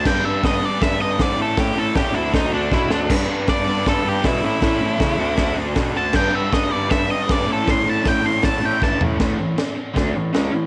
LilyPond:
<<
  \new Staff \with { instrumentName = "Lead electric guitar" } { \time 4/4 \key a \mixolydian \tempo 4 = 157 g''8 e''8 dis''8 d''8 e''8 dis''8 d''8 a'8 | g'8 a'8 g'8 e'8 dis'8 d'8 e'8 d'8 | r4 d''4 a'8 g'8 e'8 e'8~ | e'2~ e'8 r4 a''8 |
g''8 e''8 dis''8 d''8 e''8 dis''8 d''8 a'8 | c'''8 a''8 g''8 c'''8 a''8 g''8 a''8 r8 | r1 | }
  \new Staff \with { instrumentName = "Overdriven electric guitar" } { \time 4/4 \key a \mixolydian <g b d' b'>8 <g b d' b'>8 <g b d' b'>8 <g b d' b'>8 <g b d' b'>8 <g b d' b'>8 <g b d' b'>8 <a, a cis' e' a'>8 | <a, a cis' e' a'>8 <a, a cis' e' a'>8 <a, a cis' e' a'>8 <d d' fis' a'>8 <d d' fis' a'>8 <d d' fis' a'>8 <d d' fis' a'>8 <d d' fis' a'>8 | <g b d' b'>8 <g b d' b'>8 <g b d' b'>8 <g b d' b'>8 <g b d' b'>8 <g b d' b'>8 <g b d' b'>8 <a, e a cis' e' a'>8 | <a, e a cis' e' a'>8 <a, e a cis' e' a'>8 <a, e a cis' e' a'>8 <d d' fis' a'>8 <d d' fis' a'>8 <d d' fis' a'>8 <d d' fis' a'>8 <d d' fis' a'>8 |
<g b d' b'>8 <g b d' b'>8 <g b d' b'>8 <g b d' b'>8 <g b d' b'>8 <g b d' b'>8 <g b d' b'>8 <a, a cis' e' a'>8 | <a, a cis' e' a'>8 <a, a cis' e' a'>8 <a, a cis' e' a'>8 <a, a cis' e' a'>8 <a, a cis' e' a'>8 <a, a cis' e' a'>8 <a, a cis' e' a'>8 <a, a cis' e' a'>8 | <a, e a>8 <a, e>8 r4 <d a d'>8 <a, e>8 <cis gis cis'>8 <a, e>8 | }
  \new Staff \with { instrumentName = "Bass clarinet" } { \clef bass \time 4/4 \key a \mixolydian g,8 g,8 g,8 r8 g,8 g,8 gis,8 a,8 | a,8 a,8 a,8 d,8 d,8 d,8 b,8 d,8 | g,8 g,8 g,8 g,8 g,8 g,8 b,8 a,8 | a,8 a,8 cis8 d,8 d,8 d,8 b,8 d,8 |
g,8 g,8 g,8 g,8 g,8 r8 g,8 a,8 | a,8 a,8 a,8 a,8 a,8 a,8 g,8 a,8 | a,8 a,8 a,8 a,8 d,8 a,8 cis,8 a,8 | }
  \new DrumStaff \with { instrumentName = "Drums" } \drummode { \time 4/4 <cymc bd sn>4 <hho bd sn>4 <hho bd sn>4 <hho bd sn>4 | <hho bd sn>4 <hho bd sn>4 <hho bd sn>4 <bd sn>8 sn8 | <cymc bd sn>4 <hho bd sn>4 <hho bd sn>4 <hho bd sn>4 | <hho bd sn>4 <hho bd sn>4 <hho bd sn>4 <hho bd sn>4 |
<cymc bd sn>4 <hho bd sn>4 <hho bd sn>4 <hho bd sn>4 | <hho bd sn>4 <hho bd sn>4 <hho bd sn>4 <bd sn>8 tomfh8 | <cymc bd sn>4 <cymc sn>4 <cymc bd sn>4 <cymc sn>4 | }
>>